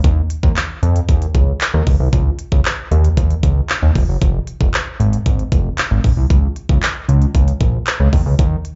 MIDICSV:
0, 0, Header, 1, 3, 480
1, 0, Start_track
1, 0, Key_signature, -5, "major"
1, 0, Tempo, 521739
1, 40, Time_signature, 4, 2, 24, 8
1, 8053, End_track
2, 0, Start_track
2, 0, Title_t, "Analog synth bass"
2, 0, Program_c, 0, 38
2, 38, Note_on_c, 0, 39, 117
2, 201, Note_off_c, 0, 39, 0
2, 399, Note_on_c, 0, 39, 108
2, 480, Note_off_c, 0, 39, 0
2, 760, Note_on_c, 0, 41, 105
2, 922, Note_off_c, 0, 41, 0
2, 999, Note_on_c, 0, 39, 99
2, 1162, Note_off_c, 0, 39, 0
2, 1239, Note_on_c, 0, 37, 91
2, 1402, Note_off_c, 0, 37, 0
2, 1599, Note_on_c, 0, 39, 98
2, 1680, Note_off_c, 0, 39, 0
2, 1719, Note_on_c, 0, 37, 91
2, 1800, Note_off_c, 0, 37, 0
2, 1840, Note_on_c, 0, 36, 100
2, 1921, Note_off_c, 0, 36, 0
2, 1958, Note_on_c, 0, 37, 106
2, 2121, Note_off_c, 0, 37, 0
2, 2317, Note_on_c, 0, 37, 104
2, 2399, Note_off_c, 0, 37, 0
2, 2679, Note_on_c, 0, 39, 105
2, 2842, Note_off_c, 0, 39, 0
2, 2919, Note_on_c, 0, 39, 102
2, 3081, Note_off_c, 0, 39, 0
2, 3158, Note_on_c, 0, 37, 97
2, 3321, Note_off_c, 0, 37, 0
2, 3518, Note_on_c, 0, 39, 90
2, 3600, Note_off_c, 0, 39, 0
2, 3639, Note_on_c, 0, 29, 99
2, 3720, Note_off_c, 0, 29, 0
2, 3757, Note_on_c, 0, 30, 93
2, 3839, Note_off_c, 0, 30, 0
2, 3879, Note_on_c, 0, 29, 112
2, 4041, Note_off_c, 0, 29, 0
2, 4238, Note_on_c, 0, 29, 103
2, 4320, Note_off_c, 0, 29, 0
2, 4598, Note_on_c, 0, 32, 97
2, 4760, Note_off_c, 0, 32, 0
2, 4839, Note_on_c, 0, 32, 99
2, 5002, Note_off_c, 0, 32, 0
2, 5079, Note_on_c, 0, 29, 91
2, 5241, Note_off_c, 0, 29, 0
2, 5438, Note_on_c, 0, 32, 91
2, 5519, Note_off_c, 0, 32, 0
2, 5559, Note_on_c, 0, 34, 97
2, 5640, Note_off_c, 0, 34, 0
2, 5679, Note_on_c, 0, 36, 97
2, 5760, Note_off_c, 0, 36, 0
2, 5798, Note_on_c, 0, 37, 113
2, 5961, Note_off_c, 0, 37, 0
2, 6158, Note_on_c, 0, 37, 110
2, 6240, Note_off_c, 0, 37, 0
2, 6518, Note_on_c, 0, 37, 96
2, 6681, Note_off_c, 0, 37, 0
2, 6759, Note_on_c, 0, 37, 100
2, 6921, Note_off_c, 0, 37, 0
2, 6998, Note_on_c, 0, 34, 90
2, 7161, Note_off_c, 0, 34, 0
2, 7358, Note_on_c, 0, 37, 82
2, 7440, Note_off_c, 0, 37, 0
2, 7478, Note_on_c, 0, 39, 104
2, 7560, Note_off_c, 0, 39, 0
2, 7599, Note_on_c, 0, 37, 99
2, 7680, Note_off_c, 0, 37, 0
2, 7719, Note_on_c, 0, 39, 111
2, 7881, Note_off_c, 0, 39, 0
2, 8053, End_track
3, 0, Start_track
3, 0, Title_t, "Drums"
3, 39, Note_on_c, 9, 36, 125
3, 39, Note_on_c, 9, 42, 93
3, 131, Note_off_c, 9, 36, 0
3, 131, Note_off_c, 9, 42, 0
3, 277, Note_on_c, 9, 42, 76
3, 369, Note_off_c, 9, 42, 0
3, 398, Note_on_c, 9, 36, 101
3, 490, Note_off_c, 9, 36, 0
3, 520, Note_on_c, 9, 39, 123
3, 521, Note_on_c, 9, 42, 99
3, 612, Note_off_c, 9, 39, 0
3, 613, Note_off_c, 9, 42, 0
3, 762, Note_on_c, 9, 42, 71
3, 854, Note_off_c, 9, 42, 0
3, 881, Note_on_c, 9, 42, 57
3, 973, Note_off_c, 9, 42, 0
3, 1000, Note_on_c, 9, 36, 97
3, 1002, Note_on_c, 9, 42, 106
3, 1092, Note_off_c, 9, 36, 0
3, 1094, Note_off_c, 9, 42, 0
3, 1121, Note_on_c, 9, 42, 57
3, 1213, Note_off_c, 9, 42, 0
3, 1239, Note_on_c, 9, 36, 93
3, 1242, Note_on_c, 9, 42, 72
3, 1331, Note_off_c, 9, 36, 0
3, 1334, Note_off_c, 9, 42, 0
3, 1478, Note_on_c, 9, 42, 83
3, 1481, Note_on_c, 9, 39, 116
3, 1570, Note_off_c, 9, 42, 0
3, 1573, Note_off_c, 9, 39, 0
3, 1719, Note_on_c, 9, 36, 97
3, 1719, Note_on_c, 9, 46, 83
3, 1811, Note_off_c, 9, 36, 0
3, 1811, Note_off_c, 9, 46, 0
3, 1958, Note_on_c, 9, 36, 127
3, 1958, Note_on_c, 9, 42, 99
3, 2050, Note_off_c, 9, 36, 0
3, 2050, Note_off_c, 9, 42, 0
3, 2196, Note_on_c, 9, 42, 79
3, 2288, Note_off_c, 9, 42, 0
3, 2318, Note_on_c, 9, 36, 97
3, 2410, Note_off_c, 9, 36, 0
3, 2441, Note_on_c, 9, 39, 125
3, 2442, Note_on_c, 9, 42, 98
3, 2533, Note_off_c, 9, 39, 0
3, 2534, Note_off_c, 9, 42, 0
3, 2682, Note_on_c, 9, 42, 72
3, 2774, Note_off_c, 9, 42, 0
3, 2801, Note_on_c, 9, 42, 59
3, 2893, Note_off_c, 9, 42, 0
3, 2919, Note_on_c, 9, 36, 96
3, 2920, Note_on_c, 9, 42, 103
3, 3011, Note_off_c, 9, 36, 0
3, 3012, Note_off_c, 9, 42, 0
3, 3040, Note_on_c, 9, 42, 57
3, 3132, Note_off_c, 9, 42, 0
3, 3158, Note_on_c, 9, 36, 100
3, 3160, Note_on_c, 9, 42, 75
3, 3250, Note_off_c, 9, 36, 0
3, 3252, Note_off_c, 9, 42, 0
3, 3398, Note_on_c, 9, 42, 81
3, 3400, Note_on_c, 9, 39, 117
3, 3490, Note_off_c, 9, 42, 0
3, 3492, Note_off_c, 9, 39, 0
3, 3639, Note_on_c, 9, 36, 90
3, 3639, Note_on_c, 9, 46, 83
3, 3731, Note_off_c, 9, 36, 0
3, 3731, Note_off_c, 9, 46, 0
3, 3879, Note_on_c, 9, 36, 123
3, 3880, Note_on_c, 9, 42, 95
3, 3971, Note_off_c, 9, 36, 0
3, 3972, Note_off_c, 9, 42, 0
3, 4115, Note_on_c, 9, 42, 75
3, 4207, Note_off_c, 9, 42, 0
3, 4238, Note_on_c, 9, 36, 100
3, 4330, Note_off_c, 9, 36, 0
3, 4361, Note_on_c, 9, 39, 121
3, 4361, Note_on_c, 9, 42, 97
3, 4453, Note_off_c, 9, 39, 0
3, 4453, Note_off_c, 9, 42, 0
3, 4602, Note_on_c, 9, 42, 69
3, 4694, Note_off_c, 9, 42, 0
3, 4720, Note_on_c, 9, 42, 59
3, 4812, Note_off_c, 9, 42, 0
3, 4839, Note_on_c, 9, 36, 94
3, 4841, Note_on_c, 9, 42, 107
3, 4931, Note_off_c, 9, 36, 0
3, 4933, Note_off_c, 9, 42, 0
3, 4961, Note_on_c, 9, 42, 58
3, 5053, Note_off_c, 9, 42, 0
3, 5078, Note_on_c, 9, 36, 102
3, 5081, Note_on_c, 9, 42, 77
3, 5170, Note_off_c, 9, 36, 0
3, 5173, Note_off_c, 9, 42, 0
3, 5317, Note_on_c, 9, 42, 84
3, 5320, Note_on_c, 9, 39, 112
3, 5409, Note_off_c, 9, 42, 0
3, 5412, Note_off_c, 9, 39, 0
3, 5559, Note_on_c, 9, 36, 94
3, 5560, Note_on_c, 9, 46, 83
3, 5651, Note_off_c, 9, 36, 0
3, 5652, Note_off_c, 9, 46, 0
3, 5798, Note_on_c, 9, 42, 95
3, 5799, Note_on_c, 9, 36, 120
3, 5890, Note_off_c, 9, 42, 0
3, 5891, Note_off_c, 9, 36, 0
3, 6037, Note_on_c, 9, 42, 77
3, 6129, Note_off_c, 9, 42, 0
3, 6158, Note_on_c, 9, 36, 98
3, 6250, Note_off_c, 9, 36, 0
3, 6280, Note_on_c, 9, 39, 127
3, 6281, Note_on_c, 9, 42, 93
3, 6372, Note_off_c, 9, 39, 0
3, 6373, Note_off_c, 9, 42, 0
3, 6522, Note_on_c, 9, 42, 71
3, 6614, Note_off_c, 9, 42, 0
3, 6639, Note_on_c, 9, 42, 55
3, 6731, Note_off_c, 9, 42, 0
3, 6759, Note_on_c, 9, 36, 96
3, 6760, Note_on_c, 9, 42, 104
3, 6851, Note_off_c, 9, 36, 0
3, 6852, Note_off_c, 9, 42, 0
3, 6880, Note_on_c, 9, 42, 59
3, 6972, Note_off_c, 9, 42, 0
3, 6998, Note_on_c, 9, 36, 96
3, 6999, Note_on_c, 9, 42, 72
3, 7090, Note_off_c, 9, 36, 0
3, 7091, Note_off_c, 9, 42, 0
3, 7236, Note_on_c, 9, 42, 85
3, 7239, Note_on_c, 9, 39, 119
3, 7328, Note_off_c, 9, 42, 0
3, 7331, Note_off_c, 9, 39, 0
3, 7478, Note_on_c, 9, 36, 93
3, 7479, Note_on_c, 9, 46, 84
3, 7570, Note_off_c, 9, 36, 0
3, 7571, Note_off_c, 9, 46, 0
3, 7719, Note_on_c, 9, 36, 123
3, 7719, Note_on_c, 9, 42, 92
3, 7811, Note_off_c, 9, 36, 0
3, 7811, Note_off_c, 9, 42, 0
3, 7957, Note_on_c, 9, 42, 76
3, 8049, Note_off_c, 9, 42, 0
3, 8053, End_track
0, 0, End_of_file